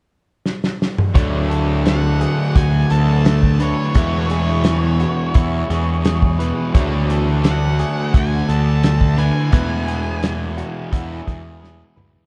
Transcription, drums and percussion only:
0.46 snare medium
0.64 snare medium
0.82 snare medium
0.98 mid tom medium
1.15 kick loud
1.15 closed hi-hat loud
1.51 closed hi-hat medium
1.86 snare loud
1.86 closed hi-hat medium
2.21 closed hi-hat medium
2.56 kick loud
2.56 closed hi-hat loud
2.90 closed hi-hat medium
3.25 snare loud
3.25 closed hi-hat medium
3.43 kick medium
3.60 closed hi-hat medium
3.94 kick loud
3.94 closed hi-hat loud
4.30 closed hi-hat medium
4.64 snare loud
4.64 closed hi-hat medium
5.00 closed hi-hat medium
5.34 kick loud
5.34 closed hi-hat loud
5.70 closed hi-hat medium
6.05 snare loud
6.05 closed hi-hat medium
6.22 kick medium
6.40 closed hi-hat medium
6.75 kick loud
6.75 closed hi-hat loud
7.10 closed hi-hat medium
7.44 snare loud
7.44 closed hi-hat medium
7.79 closed hi-hat medium
8.14 kick loud
8.14 closed hi-hat medium
8.49 closed hi-hat medium
8.83 snare loud
8.83 closed hi-hat loud
9.01 kick medium
9.18 closed hi-hat medium
9.53 kick loud
9.53 closed hi-hat loud
9.88 closed hi-hat medium
10.23 snare loud
10.23 closed hi-hat medium
10.58 closed hi-hat medium
10.93 kick loud
10.93 closed hi-hat medium
11.28 kick medium
11.28 closed hi-hat medium
11.64 snare medium
11.97 mid tom medium
12.15 floor tom medium

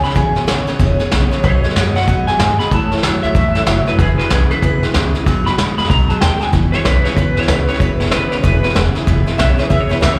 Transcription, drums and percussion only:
0.04 snare soft
0.10 snare soft
0.15 kick loud
0.15 snare soft
0.36 snare soft
0.48 snare loud
0.48 hi-hat pedal medium
0.68 snare soft
0.79 kick loud
0.79 snare soft
1.00 snare soft
1.11 snare loud
1.11 hi-hat pedal loud
1.32 snare soft
1.44 kick loud
1.44 snare soft
1.64 snare soft
1.70 snare soft
1.76 snare loud
1.76 hi-hat pedal medium
1.96 snare soft
2.02 snare soft
2.07 kick loud
2.07 snare soft
2.28 snare soft
2.39 snare loud
2.39 hi-hat pedal medium
2.60 snare soft
2.71 kick loud
2.71 snare soft
2.92 snare soft
2.97 snare soft
3.03 snare loud
3.03 hi-hat pedal medium
3.23 snare soft
3.35 kick loud
3.35 snare soft
3.55 snare soft
3.67 snare loud
3.67 hi-hat pedal medium
3.87 snare soft
3.98 kick loud
3.98 snare soft
4.19 snare soft
4.30 snare loud
4.30 hi-hat pedal medium
4.51 snare soft
4.62 kick loud
4.62 snare soft
4.83 snare soft
4.94 snare loud
4.94 hi-hat pedal medium
5.15 snare soft
5.26 kick loud
5.26 snare soft
5.46 snare soft
5.58 snare loud
5.58 hi-hat pedal medium
5.78 snare soft
5.84 snare soft
5.90 kick loud
5.90 snare soft
6.10 snare soft
6.21 snare loud
6.21 hi-hat pedal loud
6.41 snare soft
6.53 kick loud
6.53 snare soft
6.73 snare soft
6.85 snare loud
6.85 hi-hat pedal loud
7.05 snare soft
7.17 kick loud
7.17 snare soft
7.37 snare soft
7.42 snare soft
7.48 snare loud
7.48 hi-hat pedal loud
7.68 snare soft
7.74 snare soft
7.80 kick loud
7.80 snare soft
8.00 snare soft
8.06 snare soft
8.11 snare loud
8.11 hi-hat pedal medium
8.31 snare soft
8.44 kick loud
8.44 snare soft
8.64 snare soft
8.70 snare soft
8.76 snare loud
8.76 hi-hat pedal medium
8.96 snare soft
9.07 kick loud
9.07 snare soft
9.27 snare soft
9.39 snare loud
9.39 hi-hat pedal medium
9.59 snare soft
9.71 kick loud
9.71 snare soft
9.91 snare soft
10.02 snare loud
10.02 hi-hat pedal loud

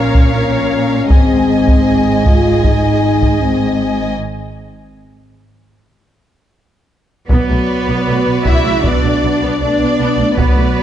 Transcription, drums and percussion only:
0.14 taiko medium
1.10 taiko medium
1.68 taiko medium
2.26 taiko medium
2.64 taiko medium
3.22 taiko medium
7.30 taiko medium
8.46 taiko medium
8.84 taiko medium
10.38 taiko medium

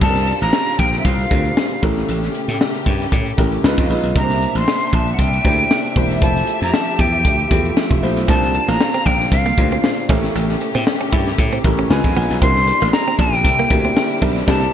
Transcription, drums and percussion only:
0.01 kick loud
0.01 crash medium
0.15 snare soft
0.15 closed hi-hat medium
0.27 closed hi-hat medium
0.41 closed hi-hat soft
0.53 snare loud
0.67 closed hi-hat soft
0.79 kick medium
0.79 closed hi-hat medium
0.93 snare soft
0.93 closed hi-hat soft
1.05 kick loud
1.05 closed hi-hat loud
1.19 closed hi-hat medium
1.31 kick loud
1.31 closed hi-hat medium
1.45 closed hi-hat medium
1.57 snare loud
1.71 closed hi-hat medium
1.83 kick loud
1.83 open hi-hat medium
1.97 snare soft
1.97 closed hi-hat medium
2.09 closed hi-hat medium
2.23 snare soft
2.23 closed hi-hat medium
2.35 closed hi-hat medium
2.48 snare soft
2.48 closed hi-hat soft
2.61 snare loud
2.74 closed hi-hat medium
2.86 kick medium
2.86 closed hi-hat medium
3.00 snare soft
3.00 closed hi-hat soft
3.12 kick loud
3.12 closed hi-hat loud
3.26 closed hi-hat medium
3.38 kick loud
3.38 closed hi-hat medium
3.52 closed hi-hat medium
3.64 snare loud
3.78 kick medium
3.78 closed hi-hat medium
3.90 open hi-hat medium
4.04 closed hi-hat medium
4.16 kick loud
4.16 closed hi-hat medium
4.30 snare soft
4.30 closed hi-hat medium
4.42 closed hi-hat medium
4.55 snare soft
4.55 closed hi-hat soft
4.68 snare loud
4.81 closed hi-hat soft
4.93 kick loud
4.93 closed hi-hat medium
5.07 closed hi-hat soft
5.19 kick medium
5.19 closed hi-hat loud
5.33 closed hi-hat medium
5.45 kick loud
5.45 closed hi-hat medium
5.59 closed hi-hat medium
5.71 snare loud
5.85 closed hi-hat soft
5.96 kick medium
5.96 open hi-hat medium
6.10 snare soft
6.10 closed hi-hat medium
6.22 kick loud
6.22 closed hi-hat medium
6.36 snare soft
6.36 closed hi-hat medium
6.47 closed hi-hat medium
6.61 snare soft
6.61 closed hi-hat medium
6.74 snare loud
6.87 closed hi-hat soft
6.99 kick medium
6.99 closed hi-hat medium
7.12 closed hi-hat soft
7.25 kick medium
7.25 closed hi-hat medium
7.39 closed hi-hat medium
7.51 kick loud
7.51 closed hi-hat medium
7.65 closed hi-hat soft
7.77 snare loud
7.91 kick medium
7.91 closed hi-hat medium
8.03 open hi-hat medium
8.17 snare soft
8.17 closed hi-hat medium
8.28 kick loud
8.28 closed hi-hat medium
8.42 snare soft
8.42 closed hi-hat soft
8.54 closed hi-hat medium
8.68 snare soft
8.68 closed hi-hat soft
8.81 snare loud
8.94 closed hi-hat medium
9.06 kick medium
9.06 closed hi-hat medium
9.20 snare soft
9.20 closed hi-hat soft
9.32 kick loud
9.32 closed hi-hat loud
9.46 closed hi-hat medium
9.58 kick loud
9.58 closed hi-hat medium
9.72 closed hi-hat medium
9.84 snare loud
9.98 closed hi-hat medium
10.09 kick loud
10.09 open hi-hat medium
10.24 snare soft
10.24 closed hi-hat medium
10.35 closed hi-hat medium
10.49 snare soft
10.49 closed hi-hat medium
10.61 closed hi-hat medium
10.75 snare soft
10.75 closed hi-hat medium
10.87 snare loud
11.00 closed hi-hat medium
11.13 kick medium
11.13 closed hi-hat medium
11.27 snare soft
11.27 closed hi-hat soft
11.39 kick loud
11.39 closed hi-hat loud
11.53 closed hi-hat medium
11.64 kick loud
11.64 closed hi-hat medium
11.79 closed hi-hat medium
11.91 snare loud
12.04 kick medium
12.04 closed hi-hat medium
12.16 open hi-hat medium
12.30 snare soft
12.30 closed hi-hat medium
12.42 kick loud
12.42 closed hi-hat medium
12.56 snare soft
12.56 closed hi-hat medium
12.67 closed hi-hat medium
12.81 snare soft
12.81 closed hi-hat soft
12.93 snare loud
13.07 closed hi-hat soft
13.19 kick loud
13.19 closed hi-hat medium
13.33 snare soft
13.33 closed hi-hat soft
13.45 kick loud
13.45 closed hi-hat loud
13.59 closed hi-hat medium
13.71 kick loud
13.71 closed hi-hat medium
13.84 closed hi-hat medium
13.97 snare loud
14.11 closed hi-hat medium
14.22 kick medium
14.22 open hi-hat medium
14.36 snare soft
14.36 closed hi-hat medium
14.48 kick loud
14.48 snare loud
14.48 crash medium

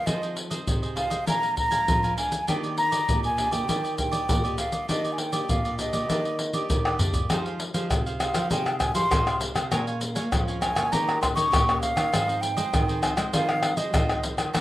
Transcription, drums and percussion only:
0.07 pandeiro medium
0.07 maracas medium
0.07 surdo medium
0.23 pandeiro soft
0.23 maracas soft
0.37 pandeiro medium
0.51 pandeiro medium
0.51 maracas medium
0.67 pandeiro medium
0.67 maracas medium
0.67 surdo medium
0.83 pandeiro soft
0.83 maracas soft
0.97 pandeiro medium
1.11 pandeiro soft
1.11 maracas medium
1.27 pandeiro medium
1.27 maracas medium
1.27 surdo medium
1.43 pandeiro soft
1.43 maracas soft
1.57 pandeiro medium
1.57 surdo medium
1.72 pandeiro soft
1.72 maracas medium
1.88 pandeiro medium
1.88 maracas medium
1.88 surdo loud
2.04 pandeiro soft
2.04 maracas soft
2.18 pandeiro medium
2.32 pandeiro medium
2.32 maracas medium
2.48 pandeiro medium
2.48 maracas medium
2.48 surdo medium
2.64 pandeiro soft
2.64 maracas soft
2.78 pandeiro medium
2.92 pandeiro medium
2.92 maracas medium
3.09 pandeiro medium
3.09 maracas medium
3.09 surdo medium
3.24 pandeiro soft
3.24 maracas soft
3.38 pandeiro medium
3.52 pandeiro medium
3.52 maracas medium
3.69 pandeiro medium
3.69 maracas medium
3.69 surdo medium
3.85 pandeiro soft
3.85 maracas soft
3.98 pandeiro medium
3.98 maracas medium
3.98 surdo medium
4.13 pandeiro medium
4.13 maracas medium
4.29 pandeiro medium
4.29 maracas medium
4.29 surdo loud
4.45 pandeiro soft
4.45 maracas soft
4.58 pandeiro medium
4.58 maracas medium
4.72 pandeiro soft
4.72 maracas medium
4.89 pandeiro medium
4.89 maracas medium
4.89 surdo soft
5.05 pandeiro soft
5.05 maracas soft
5.18 pandeiro medium
5.33 pandeiro medium
5.33 maracas medium
5.49 pandeiro medium
5.49 maracas medium
5.49 surdo medium
5.65 pandeiro soft
5.65 maracas soft
5.79 pandeiro medium
5.79 maracas medium
5.93 pandeiro medium
5.93 maracas medium
6.10 pandeiro medium
6.10 maracas medium
6.10 surdo medium
6.25 pandeiro soft
6.25 maracas soft
6.39 pandeiro medium
6.53 pandeiro soft
6.53 maracas medium
6.70 pandeiro medium
6.70 maracas medium
6.70 surdo medium
6.85 pandeiro soft
6.85 tamborim medium
6.85 maracas soft
6.99 surdo medium
6.99 pandeiro medium
6.99 maracas medium
7.14 pandeiro soft
7.14 maracas medium
7.14 surdo medium
7.30 pandeiro medium
7.30 tamborim medium
7.30 maracas medium
7.30 surdo medium
7.46 pandeiro soft
7.46 maracas soft
7.60 pandeiro medium
7.74 pandeiro medium
7.74 maracas medium
7.91 pandeiro medium
7.91 tamborim medium
7.91 maracas medium
7.91 surdo medium
8.06 pandeiro soft
8.06 maracas soft
8.20 pandeiro medium
8.20 tamborim medium
8.20 maracas medium
8.34 pandeiro medium
8.34 tamborim medium
8.34 maracas medium
8.51 pandeiro medium
8.51 maracas medium
8.51 surdo medium
8.66 pandeiro soft
8.66 tamborim medium
8.66 maracas soft
8.80 pandeiro medium
8.80 tamborim medium
8.80 maracas medium
8.80 surdo medium
8.95 pandeiro medium
8.95 maracas medium
9.11 pandeiro medium
9.11 tamborim medium
9.11 maracas medium
9.11 surdo loud
9.27 pandeiro soft
9.27 tamborim medium
9.27 maracas soft
9.41 pandeiro medium
9.41 maracas medium
9.56 pandeiro medium
9.56 tamborim medium
9.56 maracas medium
9.72 pandeiro medium
9.72 tamborim medium
9.72 maracas medium
9.72 surdo medium
9.87 pandeiro soft
9.87 maracas soft
10.01 pandeiro medium
10.01 maracas medium
10.16 pandeiro medium
10.16 maracas medium
10.32 pandeiro medium
10.32 tamborim medium
10.32 maracas medium
10.32 surdo medium
10.48 pandeiro soft
10.48 maracas soft
10.62 pandeiro medium
10.62 tamborim medium
10.62 maracas medium
10.76 pandeiro medium
10.76 tamborim medium
10.76 maracas medium
10.93 pandeiro medium
10.93 maracas medium
10.93 surdo medium
11.09 pandeiro soft
11.09 tamborim medium
11.09 maracas soft
11.23 pandeiro medium
11.23 tamborim medium
11.23 maracas medium
11.23 surdo medium
11.37 pandeiro medium
11.37 maracas medium
11.53 pandeiro medium
11.53 tamborim medium
11.53 maracas medium
11.53 surdo loud
11.69 pandeiro soft
11.69 tamborim medium
11.69 maracas soft
11.83 pandeiro medium
11.83 maracas medium
11.97 pandeiro medium
11.97 tamborim medium
11.97 maracas medium
12.14 pandeiro medium
12.14 tamborim medium
12.14 maracas medium
12.14 surdo medium
12.29 pandeiro soft
12.29 maracas soft
12.43 pandeiro medium
12.43 maracas medium
12.57 pandeiro medium
12.57 maracas medium
12.74 pandeiro medium
12.74 tamborim medium
12.74 maracas medium
12.74 surdo medium
12.89 pandeiro soft
12.89 maracas soft
13.03 pandeiro medium
13.03 tamborim medium
13.03 maracas medium
13.17 pandeiro medium
13.17 tamborim medium
13.17 maracas medium
13.34 pandeiro medium
13.34 maracas medium
13.34 surdo medium
13.49 pandeiro soft
13.49 tamborim medium
13.49 maracas soft
13.63 pandeiro medium
13.63 tamborim medium
13.77 pandeiro medium
13.77 maracas medium
13.94 pandeiro medium
13.94 tamborim medium
13.94 maracas medium
13.94 surdo loud
14.09 pandeiro soft
14.09 tamborim medium
14.09 maracas soft
14.23 pandeiro medium
14.23 maracas medium
14.38 pandeiro medium
14.38 tamborim medium
14.38 maracas medium
14.55 pandeiro medium
14.55 tamborim medium
14.55 maracas medium
14.55 surdo medium

